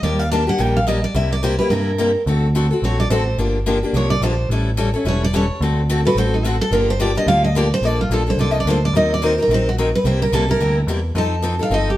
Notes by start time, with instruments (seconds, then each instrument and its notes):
0.03 picked electric bass D#2, steel-string acoustic guitar D#3 G3 A#3 D4 G4 D5
0.19 steel-string acoustic guitar F5
0.32 steel-string acoustic guitar D#3 G3 A#3 D4 G4 A5
0.47 steel-string acoustic guitar A#3 D4 G4 F#5
0.58 picked electric bass A#1, steel-string acoustic guitar D#3 G3 A#3 D4 G4 G5
0.77 steel-string acoustic guitar F5
0.87 steel-string acoustic guitar D#3 G3 A#3 D4 G4 D#5
1.04 steel-string acoustic guitar D5
1.14 picked electric bass C2, steel-string acoustic guitar C3 G3 A#3 E4 G4 E5
1.32 steel-string acoustic guitar D5
1.43 steel-string acoustic guitar C3 G3 A#3 E4 G4 C5
1.59 steel-string acoustic guitar A#3 E4 G4 B4
1.70 picked electric bass G2, steel-string acoustic guitar C3 G3 A#3 E4 G4 A#4
1.98 steel-string acoustic guitar C3 G3 A#3 E4 G4
2.26 picked electric bass D2, steel-string acoustic guitar D3 A3 C4 F#4 A4
2.55 steel-string acoustic guitar D3 A3 C4 F#4 A4
2.71 steel-string acoustic guitar C4 F#4 A4
2.82 picked electric bass A#1, steel-string acoustic guitar D3 A3 C4 F#4 A4 C#5
3.00 steel-string acoustic guitar D5
3.10 picked electric bass A1, steel-string acoustic guitar D3 A3 C4 F#4 A4 C5
3.38 picked electric bass G1, steel-string acoustic guitar D3 F3 A#3 D4 G4
3.66 steel-string acoustic guitar D3 F3 A#3 D4 G4
3.83 steel-string acoustic guitar A#3 D4 G4
3.93 picked electric bass C2, steel-string acoustic guitar D3 F3 A#3 D4 G4 C#5
4.10 steel-string acoustic guitar D5
4.20 picked electric bass A#1, steel-string acoustic guitar D3 F3 A#3 D4 G4 C5
4.49 picked electric bass A1, steel-string acoustic guitar E3 G3 C#4 E4 A4
4.77 steel-string acoustic guitar E3 G3 C#4 E4 A4
4.94 steel-string acoustic guitar C#4 E4 A4
5.05 picked electric bass E1, steel-string acoustic guitar E3 G3 C#4 E4 A4 C#5
5.24 steel-string acoustic guitar D5
5.33 steel-string acoustic guitar E3 G3 C#4 E4 A4 C#5
5.61 picked electric bass D2, steel-string acoustic guitar D3 A3 C4 F#4 A4
5.90 steel-string acoustic guitar D3 A3 C4 F#4 A4
6.05 steel-string acoustic guitar C4 F#4 A4 B4
6.15 picked electric bass A1, steel-string acoustic guitar D3 A3 C4 F#4 A4 C5
6.34 steel-string acoustic guitar D#4
6.44 steel-string acoustic guitar D3 A3 C4 F#4 A4
6.61 steel-string acoustic guitar A4
6.71 picked electric bass G1, steel-string acoustic guitar D3 F3 A#3 D4 G4 A#4
6.90 steel-string acoustic guitar C5
7.00 steel-string acoustic guitar D3 F3 A#3 D4 G4 D5
7.15 steel-string acoustic guitar A#3 D4 G4 D#5
7.27 picked electric bass D2, steel-string acoustic guitar D3 F3 A#3 D4 G4 F5
7.44 steel-string acoustic guitar D#5
7.55 steel-string acoustic guitar D3 F3 A#3 D4 G4 D5
7.74 steel-string acoustic guitar C5
7.81 picked electric bass A#1, steel-string acoustic guitar D3 F3 A#3 D4 A4
7.85 steel-string acoustic guitar D5
8.01 steel-string acoustic guitar F4
8.10 picked electric bass A#1, steel-string acoustic guitar D3 F3 A#3 D4 A4
8.14 steel-string acoustic guitar A4
8.27 steel-string acoustic guitar A#3 D4 A4 C5
8.37 picked electric bass C2, steel-string acoustic guitar D3 F3 A#3 D4 A4
8.41 steel-string acoustic guitar D5
8.51 steel-string acoustic guitar D#5
8.60 steel-string acoustic guitar D5
8.65 picked electric bass D2, steel-string acoustic guitar D3 F3 A#3 D4 A4
8.70 steel-string acoustic guitar C5
8.85 steel-string acoustic guitar D5
8.93 picked electric bass D#2, steel-string acoustic guitar D#3 F#3 C4 D#4 A#4 D#5
9.14 steel-string acoustic guitar D5
9.22 steel-string acoustic guitar D#3 F#3 C4 D#4 A#4 C5
9.38 steel-string acoustic guitar C4 D#4 A#4
9.42 steel-string acoustic guitar A#4
9.48 picked electric bass A#1, steel-string acoustic guitar D#3 F#3 C4 D#4 A#4
9.54 steel-string acoustic guitar C5
9.69 steel-string acoustic guitar F#4
9.78 steel-string acoustic guitar D#3 F#3 C4 D#4 A#4
9.95 steel-string acoustic guitar B4
10.04 picked electric bass C2, steel-string acoustic guitar C3 G3 A#3 E4 G4 C5
10.22 steel-string acoustic guitar A#4
10.32 picked electric bass C2, steel-string acoustic guitar C3 G3 A#3 E4 G4 A4
10.49 steel-string acoustic guitar A#3 E4 G4 A#4
10.60 picked electric bass D2, steel-string acoustic guitar C3 G3 A#3 E4 G4
10.87 picked electric bass E2, steel-string acoustic guitar C3 G3 A#3 E4 G4
11.15 picked electric bass F2, steel-string acoustic guitar F3 C4 D#4 A4 A5
11.42 steel-string acoustic guitar F3 C4 D#4 A4
11.59 steel-string acoustic guitar C4 D#4 A4 F5
11.70 picked electric bass G1, steel-string acoustic guitar F3 C4 D#4 A4 D#5
11.90 steel-string acoustic guitar G4